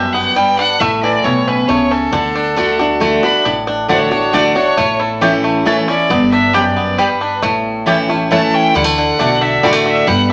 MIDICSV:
0, 0, Header, 1, 6, 480
1, 0, Start_track
1, 0, Key_signature, 2, "major"
1, 0, Tempo, 441176
1, 877, Time_signature, 3, 2, 24, 8
1, 11236, End_track
2, 0, Start_track
2, 0, Title_t, "Fiddle"
2, 0, Program_c, 0, 110
2, 0, Note_on_c, 0, 76, 85
2, 138, Note_on_c, 0, 78, 90
2, 154, Note_off_c, 0, 76, 0
2, 395, Note_on_c, 0, 79, 105
2, 412, Note_off_c, 0, 78, 0
2, 621, Note_off_c, 0, 79, 0
2, 628, Note_on_c, 0, 78, 94
2, 865, Note_on_c, 0, 76, 85
2, 881, Note_off_c, 0, 78, 0
2, 1108, Note_off_c, 0, 76, 0
2, 1114, Note_on_c, 0, 74, 94
2, 1345, Note_on_c, 0, 73, 80
2, 1361, Note_off_c, 0, 74, 0
2, 1604, Note_on_c, 0, 71, 81
2, 1620, Note_off_c, 0, 73, 0
2, 1820, Note_on_c, 0, 73, 82
2, 1836, Note_off_c, 0, 71, 0
2, 2074, Note_on_c, 0, 69, 96
2, 2090, Note_off_c, 0, 73, 0
2, 3275, Note_off_c, 0, 69, 0
2, 3510, Note_on_c, 0, 83, 99
2, 3736, Note_off_c, 0, 83, 0
2, 4233, Note_on_c, 0, 73, 73
2, 4713, Note_on_c, 0, 74, 85
2, 4730, Note_off_c, 0, 73, 0
2, 4944, Note_off_c, 0, 74, 0
2, 4950, Note_on_c, 0, 73, 90
2, 5442, Note_on_c, 0, 69, 69
2, 5458, Note_off_c, 0, 73, 0
2, 5921, Note_off_c, 0, 69, 0
2, 6395, Note_on_c, 0, 74, 91
2, 6844, Note_off_c, 0, 74, 0
2, 6868, Note_on_c, 0, 76, 94
2, 7114, Note_on_c, 0, 74, 82
2, 7130, Note_off_c, 0, 76, 0
2, 7591, Note_on_c, 0, 71, 65
2, 7607, Note_off_c, 0, 74, 0
2, 8076, Note_off_c, 0, 71, 0
2, 9043, Note_on_c, 0, 81, 88
2, 9291, Note_on_c, 0, 79, 108
2, 9307, Note_off_c, 0, 81, 0
2, 9524, Note_on_c, 0, 78, 93
2, 9540, Note_off_c, 0, 79, 0
2, 10243, Note_on_c, 0, 76, 92
2, 10259, Note_off_c, 0, 78, 0
2, 10482, Note_on_c, 0, 74, 78
2, 10498, Note_off_c, 0, 76, 0
2, 10710, Note_off_c, 0, 74, 0
2, 10717, Note_on_c, 0, 76, 111
2, 10953, Note_on_c, 0, 78, 104
2, 10970, Note_off_c, 0, 76, 0
2, 11192, Note_off_c, 0, 78, 0
2, 11198, Note_on_c, 0, 76, 92
2, 11236, Note_off_c, 0, 76, 0
2, 11236, End_track
3, 0, Start_track
3, 0, Title_t, "Mandolin"
3, 0, Program_c, 1, 25
3, 4234, Note_on_c, 1, 57, 102
3, 4236, Note_on_c, 1, 66, 104
3, 4242, Note_on_c, 1, 74, 89
3, 4246, Note_on_c, 1, 81, 94
3, 4334, Note_off_c, 1, 57, 0
3, 4335, Note_off_c, 1, 66, 0
3, 4338, Note_off_c, 1, 74, 0
3, 4340, Note_off_c, 1, 81, 0
3, 4709, Note_on_c, 1, 57, 93
3, 4712, Note_on_c, 1, 66, 92
3, 4719, Note_on_c, 1, 74, 103
3, 4721, Note_on_c, 1, 81, 107
3, 4812, Note_off_c, 1, 57, 0
3, 4813, Note_off_c, 1, 66, 0
3, 4817, Note_off_c, 1, 74, 0
3, 4818, Note_off_c, 1, 81, 0
3, 5674, Note_on_c, 1, 57, 87
3, 5677, Note_on_c, 1, 64, 102
3, 5683, Note_on_c, 1, 73, 113
3, 5685, Note_on_c, 1, 81, 93
3, 5775, Note_off_c, 1, 57, 0
3, 5776, Note_off_c, 1, 64, 0
3, 5779, Note_off_c, 1, 73, 0
3, 5780, Note_off_c, 1, 81, 0
3, 6153, Note_on_c, 1, 57, 85
3, 6159, Note_on_c, 1, 64, 85
3, 6163, Note_on_c, 1, 73, 94
3, 6165, Note_on_c, 1, 81, 109
3, 6254, Note_off_c, 1, 57, 0
3, 6257, Note_off_c, 1, 64, 0
3, 6259, Note_off_c, 1, 73, 0
3, 6261, Note_off_c, 1, 81, 0
3, 7109, Note_on_c, 1, 59, 97
3, 7115, Note_on_c, 1, 67, 93
3, 7119, Note_on_c, 1, 74, 100
3, 7123, Note_on_c, 1, 79, 110
3, 7213, Note_off_c, 1, 59, 0
3, 7216, Note_off_c, 1, 67, 0
3, 7218, Note_off_c, 1, 74, 0
3, 7220, Note_off_c, 1, 79, 0
3, 7594, Note_on_c, 1, 59, 89
3, 7599, Note_on_c, 1, 67, 90
3, 7603, Note_on_c, 1, 74, 102
3, 7607, Note_on_c, 1, 79, 99
3, 7695, Note_off_c, 1, 59, 0
3, 7698, Note_off_c, 1, 67, 0
3, 7700, Note_off_c, 1, 74, 0
3, 7702, Note_off_c, 1, 79, 0
3, 8551, Note_on_c, 1, 57, 93
3, 8557, Note_on_c, 1, 64, 94
3, 8561, Note_on_c, 1, 73, 95
3, 8565, Note_on_c, 1, 81, 102
3, 8654, Note_off_c, 1, 57, 0
3, 8657, Note_off_c, 1, 64, 0
3, 8659, Note_off_c, 1, 73, 0
3, 8661, Note_off_c, 1, 81, 0
3, 9040, Note_on_c, 1, 57, 90
3, 9045, Note_on_c, 1, 64, 90
3, 9047, Note_on_c, 1, 73, 93
3, 9051, Note_on_c, 1, 81, 103
3, 9139, Note_off_c, 1, 57, 0
3, 9141, Note_off_c, 1, 64, 0
3, 9142, Note_off_c, 1, 73, 0
3, 9144, Note_off_c, 1, 81, 0
3, 9999, Note_on_c, 1, 57, 93
3, 10003, Note_on_c, 1, 66, 91
3, 10005, Note_on_c, 1, 74, 106
3, 10012, Note_on_c, 1, 81, 103
3, 10099, Note_off_c, 1, 57, 0
3, 10100, Note_off_c, 1, 66, 0
3, 10102, Note_off_c, 1, 74, 0
3, 10105, Note_off_c, 1, 81, 0
3, 10478, Note_on_c, 1, 57, 87
3, 10484, Note_on_c, 1, 66, 96
3, 10488, Note_on_c, 1, 74, 104
3, 10493, Note_on_c, 1, 81, 107
3, 10578, Note_off_c, 1, 57, 0
3, 10581, Note_off_c, 1, 66, 0
3, 10583, Note_off_c, 1, 74, 0
3, 10585, Note_off_c, 1, 81, 0
3, 11236, End_track
4, 0, Start_track
4, 0, Title_t, "Five-string banjo"
4, 0, Program_c, 2, 105
4, 0, Note_on_c, 2, 62, 60
4, 0, Note_on_c, 2, 67, 65
4, 156, Note_on_c, 2, 59, 57
4, 349, Note_off_c, 2, 62, 0
4, 395, Note_on_c, 2, 55, 65
4, 591, Note_off_c, 2, 67, 0
4, 640, Note_on_c, 2, 62, 61
4, 828, Note_off_c, 2, 59, 0
4, 876, Note_off_c, 2, 55, 0
4, 878, Note_off_c, 2, 62, 0
4, 884, Note_on_c, 2, 57, 79
4, 1126, Note_on_c, 2, 52, 62
4, 1363, Note_on_c, 2, 64, 57
4, 1607, Note_on_c, 2, 61, 62
4, 1793, Note_off_c, 2, 52, 0
4, 1836, Note_off_c, 2, 57, 0
4, 1841, Note_on_c, 2, 57, 62
4, 2033, Note_off_c, 2, 64, 0
4, 2068, Note_off_c, 2, 61, 0
4, 2081, Note_on_c, 2, 61, 56
4, 2311, Note_off_c, 2, 61, 0
4, 2315, Note_on_c, 2, 62, 62
4, 2562, Note_off_c, 2, 62, 0
4, 2562, Note_on_c, 2, 62, 57
4, 2787, Note_off_c, 2, 62, 0
4, 2801, Note_on_c, 2, 62, 56
4, 3027, Note_off_c, 2, 62, 0
4, 3040, Note_on_c, 2, 62, 56
4, 3270, Note_off_c, 2, 57, 0
4, 3274, Note_on_c, 2, 57, 62
4, 3502, Note_off_c, 2, 62, 0
4, 3515, Note_on_c, 2, 62, 59
4, 3743, Note_off_c, 2, 62, 0
4, 3756, Note_on_c, 2, 62, 67
4, 3982, Note_off_c, 2, 62, 0
4, 3995, Note_on_c, 2, 62, 62
4, 4221, Note_off_c, 2, 62, 0
4, 4234, Note_on_c, 2, 62, 58
4, 4465, Note_off_c, 2, 62, 0
4, 4478, Note_on_c, 2, 62, 61
4, 4706, Note_off_c, 2, 62, 0
4, 4719, Note_on_c, 2, 62, 64
4, 4797, Note_off_c, 2, 57, 0
4, 4946, Note_off_c, 2, 62, 0
4, 4959, Note_on_c, 2, 62, 59
4, 5194, Note_on_c, 2, 57, 79
4, 5198, Note_off_c, 2, 62, 0
4, 5434, Note_on_c, 2, 64, 58
4, 5676, Note_on_c, 2, 67, 62
4, 5869, Note_off_c, 2, 57, 0
4, 5918, Note_on_c, 2, 57, 69
4, 6108, Note_off_c, 2, 64, 0
4, 6160, Note_on_c, 2, 64, 67
4, 6351, Note_off_c, 2, 67, 0
4, 6397, Note_on_c, 2, 61, 60
4, 6591, Note_off_c, 2, 57, 0
4, 6637, Note_off_c, 2, 61, 0
4, 6640, Note_off_c, 2, 64, 0
4, 6644, Note_on_c, 2, 59, 64
4, 6881, Note_on_c, 2, 62, 58
4, 7119, Note_on_c, 2, 67, 64
4, 7315, Note_off_c, 2, 59, 0
4, 7360, Note_on_c, 2, 59, 59
4, 7552, Note_off_c, 2, 62, 0
4, 7599, Note_on_c, 2, 55, 69
4, 7793, Note_off_c, 2, 67, 0
4, 7845, Note_on_c, 2, 62, 60
4, 8032, Note_off_c, 2, 59, 0
4, 8074, Note_off_c, 2, 55, 0
4, 8078, Note_on_c, 2, 57, 75
4, 8082, Note_off_c, 2, 62, 0
4, 8567, Note_on_c, 2, 67, 59
4, 8802, Note_off_c, 2, 57, 0
4, 8807, Note_on_c, 2, 57, 67
4, 9047, Note_on_c, 2, 64, 58
4, 9237, Note_off_c, 2, 67, 0
4, 9292, Note_on_c, 2, 61, 58
4, 9476, Note_off_c, 2, 57, 0
4, 9524, Note_off_c, 2, 64, 0
4, 9526, Note_off_c, 2, 61, 0
4, 9526, Note_on_c, 2, 55, 70
4, 9620, Note_off_c, 2, 55, 0
4, 9620, Note_on_c, 2, 57, 80
4, 9771, Note_on_c, 2, 50, 60
4, 10002, Note_off_c, 2, 57, 0
4, 10004, Note_on_c, 2, 62, 67
4, 10228, Note_off_c, 2, 62, 0
4, 10241, Note_on_c, 2, 62, 62
4, 10438, Note_off_c, 2, 50, 0
4, 10482, Note_on_c, 2, 55, 65
4, 10582, Note_off_c, 2, 55, 0
4, 10582, Note_on_c, 2, 57, 63
4, 10713, Note_off_c, 2, 62, 0
4, 10726, Note_on_c, 2, 62, 57
4, 10960, Note_off_c, 2, 57, 0
4, 10963, Note_off_c, 2, 62, 0
4, 10965, Note_on_c, 2, 55, 70
4, 11236, Note_off_c, 2, 55, 0
4, 11236, End_track
5, 0, Start_track
5, 0, Title_t, "Steel-string acoustic guitar"
5, 0, Program_c, 3, 25
5, 0, Note_on_c, 3, 42, 81
5, 369, Note_off_c, 3, 42, 0
5, 392, Note_on_c, 3, 43, 82
5, 850, Note_off_c, 3, 43, 0
5, 873, Note_on_c, 3, 45, 95
5, 1352, Note_on_c, 3, 47, 78
5, 1787, Note_off_c, 3, 45, 0
5, 1811, Note_off_c, 3, 47, 0
5, 1834, Note_on_c, 3, 49, 84
5, 2292, Note_off_c, 3, 49, 0
5, 2311, Note_on_c, 3, 50, 99
5, 2777, Note_off_c, 3, 50, 0
5, 2790, Note_on_c, 3, 50, 77
5, 2798, Note_on_c, 3, 57, 76
5, 2807, Note_on_c, 3, 62, 73
5, 2810, Note_on_c, 3, 66, 86
5, 3023, Note_off_c, 3, 66, 0
5, 3025, Note_off_c, 3, 50, 0
5, 3029, Note_off_c, 3, 57, 0
5, 3034, Note_off_c, 3, 62, 0
5, 3036, Note_on_c, 3, 66, 55
5, 3055, Note_on_c, 3, 62, 50
5, 3266, Note_off_c, 3, 66, 0
5, 3266, Note_on_c, 3, 50, 77
5, 3269, Note_off_c, 3, 62, 0
5, 3277, Note_on_c, 3, 57, 92
5, 3282, Note_on_c, 3, 62, 81
5, 3289, Note_on_c, 3, 66, 89
5, 3503, Note_off_c, 3, 50, 0
5, 3504, Note_off_c, 3, 66, 0
5, 3508, Note_off_c, 3, 57, 0
5, 3511, Note_off_c, 3, 62, 0
5, 3517, Note_on_c, 3, 66, 61
5, 3539, Note_on_c, 3, 62, 50
5, 3747, Note_off_c, 3, 66, 0
5, 3758, Note_off_c, 3, 62, 0
5, 3759, Note_on_c, 3, 45, 95
5, 4225, Note_on_c, 3, 50, 76
5, 4235, Note_on_c, 3, 57, 72
5, 4241, Note_on_c, 3, 62, 85
5, 4247, Note_on_c, 3, 66, 74
5, 4457, Note_off_c, 3, 66, 0
5, 4463, Note_off_c, 3, 50, 0
5, 4468, Note_off_c, 3, 57, 0
5, 4470, Note_on_c, 3, 66, 57
5, 4471, Note_off_c, 3, 62, 0
5, 4492, Note_on_c, 3, 62, 46
5, 4671, Note_off_c, 3, 45, 0
5, 4704, Note_off_c, 3, 66, 0
5, 4711, Note_off_c, 3, 62, 0
5, 4713, Note_on_c, 3, 50, 86
5, 4719, Note_on_c, 3, 57, 86
5, 4724, Note_on_c, 3, 62, 85
5, 4732, Note_on_c, 3, 66, 97
5, 4937, Note_off_c, 3, 66, 0
5, 4947, Note_off_c, 3, 50, 0
5, 4950, Note_off_c, 3, 57, 0
5, 4950, Note_on_c, 3, 66, 62
5, 4952, Note_off_c, 3, 62, 0
5, 4971, Note_on_c, 3, 62, 44
5, 5184, Note_off_c, 3, 66, 0
5, 5194, Note_off_c, 3, 62, 0
5, 5199, Note_on_c, 3, 45, 92
5, 5670, Note_on_c, 3, 52, 75
5, 5678, Note_on_c, 3, 57, 87
5, 5687, Note_on_c, 3, 61, 76
5, 5692, Note_on_c, 3, 64, 88
5, 6111, Note_off_c, 3, 45, 0
5, 6131, Note_off_c, 3, 52, 0
5, 6135, Note_off_c, 3, 57, 0
5, 6139, Note_off_c, 3, 61, 0
5, 6142, Note_off_c, 3, 64, 0
5, 6152, Note_on_c, 3, 52, 79
5, 6160, Note_on_c, 3, 57, 90
5, 6167, Note_on_c, 3, 61, 97
5, 6172, Note_on_c, 3, 64, 94
5, 6386, Note_off_c, 3, 64, 0
5, 6387, Note_off_c, 3, 52, 0
5, 6391, Note_off_c, 3, 57, 0
5, 6395, Note_off_c, 3, 61, 0
5, 6399, Note_on_c, 3, 64, 60
5, 6419, Note_on_c, 3, 61, 49
5, 6629, Note_off_c, 3, 64, 0
5, 6638, Note_on_c, 3, 43, 104
5, 6639, Note_off_c, 3, 61, 0
5, 7116, Note_off_c, 3, 43, 0
5, 7120, Note_on_c, 3, 42, 79
5, 7576, Note_off_c, 3, 42, 0
5, 7599, Note_on_c, 3, 43, 80
5, 8056, Note_off_c, 3, 43, 0
5, 8085, Note_on_c, 3, 45, 100
5, 8554, Note_on_c, 3, 52, 72
5, 8561, Note_on_c, 3, 57, 78
5, 8570, Note_on_c, 3, 61, 87
5, 8575, Note_on_c, 3, 64, 88
5, 8781, Note_off_c, 3, 64, 0
5, 8789, Note_off_c, 3, 52, 0
5, 8792, Note_off_c, 3, 57, 0
5, 8795, Note_on_c, 3, 64, 58
5, 8797, Note_off_c, 3, 61, 0
5, 8819, Note_on_c, 3, 61, 47
5, 8995, Note_off_c, 3, 45, 0
5, 9027, Note_off_c, 3, 64, 0
5, 9038, Note_on_c, 3, 52, 83
5, 9040, Note_off_c, 3, 61, 0
5, 9049, Note_on_c, 3, 57, 95
5, 9052, Note_on_c, 3, 61, 88
5, 9058, Note_on_c, 3, 64, 89
5, 9495, Note_off_c, 3, 52, 0
5, 9501, Note_off_c, 3, 57, 0
5, 9503, Note_off_c, 3, 61, 0
5, 9506, Note_off_c, 3, 64, 0
5, 9520, Note_on_c, 3, 50, 94
5, 9984, Note_off_c, 3, 50, 0
5, 9997, Note_on_c, 3, 50, 73
5, 10003, Note_on_c, 3, 57, 75
5, 10011, Note_on_c, 3, 62, 73
5, 10016, Note_on_c, 3, 66, 83
5, 10455, Note_off_c, 3, 50, 0
5, 10458, Note_off_c, 3, 57, 0
5, 10462, Note_off_c, 3, 62, 0
5, 10465, Note_off_c, 3, 66, 0
5, 10479, Note_on_c, 3, 50, 85
5, 10487, Note_on_c, 3, 57, 91
5, 10493, Note_on_c, 3, 62, 91
5, 10501, Note_on_c, 3, 66, 104
5, 10936, Note_off_c, 3, 50, 0
5, 10940, Note_off_c, 3, 57, 0
5, 10943, Note_off_c, 3, 62, 0
5, 10947, Note_off_c, 3, 66, 0
5, 10959, Note_on_c, 3, 43, 89
5, 11236, Note_off_c, 3, 43, 0
5, 11236, End_track
6, 0, Start_track
6, 0, Title_t, "Upright bass"
6, 0, Program_c, 4, 32
6, 0, Note_on_c, 4, 31, 94
6, 575, Note_off_c, 4, 31, 0
6, 871, Note_on_c, 4, 33, 95
6, 1253, Note_off_c, 4, 33, 0
6, 1352, Note_on_c, 4, 35, 77
6, 1762, Note_off_c, 4, 35, 0
6, 1832, Note_on_c, 4, 37, 92
6, 2242, Note_off_c, 4, 37, 0
6, 2312, Note_on_c, 4, 38, 90
6, 3453, Note_off_c, 4, 38, 0
6, 3757, Note_on_c, 4, 33, 88
6, 4897, Note_off_c, 4, 33, 0
6, 5196, Note_on_c, 4, 33, 93
6, 6336, Note_off_c, 4, 33, 0
6, 6634, Note_on_c, 4, 31, 95
6, 7776, Note_off_c, 4, 31, 0
6, 8077, Note_on_c, 4, 33, 91
6, 9218, Note_off_c, 4, 33, 0
6, 9519, Note_on_c, 4, 38, 94
6, 9900, Note_off_c, 4, 38, 0
6, 10006, Note_on_c, 4, 35, 80
6, 10412, Note_off_c, 4, 35, 0
6, 10480, Note_on_c, 4, 33, 97
6, 10888, Note_off_c, 4, 33, 0
6, 10959, Note_on_c, 4, 31, 91
6, 11236, Note_off_c, 4, 31, 0
6, 11236, End_track
0, 0, End_of_file